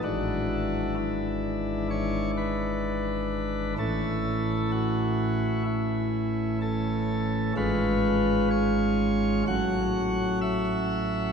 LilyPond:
<<
  \new Staff \with { instrumentName = "Pipe organ" } { \time 4/4 \key a \major \tempo 4 = 64 fis'4 e'4 cis''8 b'4. | a'4 fis'4 e'4 a'4 | b'4 cis''4 fis''4 e''4 | }
  \new Staff \with { instrumentName = "Pipe organ" } { \clef bass \time 4/4 \key a \major <gis,, gis, e d' e'>1 | <a,, a, e cis' e'>1 | <gis,, gis, gis cis' eis'>2 <a,, a, fis cis' fis'>2 | }
>>